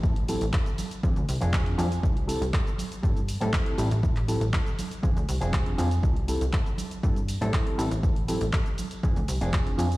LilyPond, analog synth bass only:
\new Staff \with { instrumentName = "Analog synth bass" } { \clef bass \time 4/4 \key c \major \tempo 4 = 120 r8. a,,16 r4 f,16 d,16 c,16 f,,8. f,8 | c,8. c,16 r4 g,8. a,16 r8 a,,16 a,,16 | r8. a,,16 r4 f,16 d,16 c,16 f,,8. f,8 | c,8. c,16 r4 g,8. a,16 r8 a,,16 a,,16 |
r8. a,,16 r4 f,16 d,16 c,16 f,,8. f,8 | }